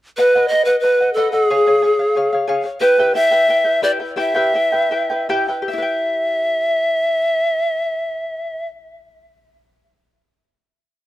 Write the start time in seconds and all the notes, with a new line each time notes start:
0.17 B4 D#5 F#5
0.35 B4 D#5 F#5
0.48 B4 D#5
0.52 D#5 F#5
0.65 B4 D#5 F#5
0.80 B4
0.84 D#5 F#5
1.00 D#5 F#5
1.13 A4 B4 D#5
1.18 F#5
1.32 G#4 D#5 F#5
1.50 G#4 C#5 F5
1.67 G#4 C#5 F5
1.82 G#4 C#5 F5
1.99 C#5 F5
2.15 G#4 C#5 F5
2.33 C#5 F5
2.48 G#4 C#5 F5
2.64 C#5 F5
2.80 E4 G4 B4 E5 G5
2.99 E4 G4 B4 E5 G5
3.14 E4 B4 E5 G5
3.31 E4 B4 G5
3.49 E4 B4 E5 G5
3.65 E4 B4 G5
3.82 E4 G4 B4 D5 E5 G5
4.00 E4 B4 G5
4.16 E4 G4 B4 E5 G5
4.35 E4 G4 B4 E5 G5
4.54 E4 B4 E5 G5
4.72 E4 B4 G5
4.91 E4 B4 E5 G5
5.10 E4 B4 G5
5.29 E4 G4 B4 E5 G5
5.48 E4 B4 G5
5.62 G4
5.68 E5
5.73 E4
5.78 B4
5.82 G5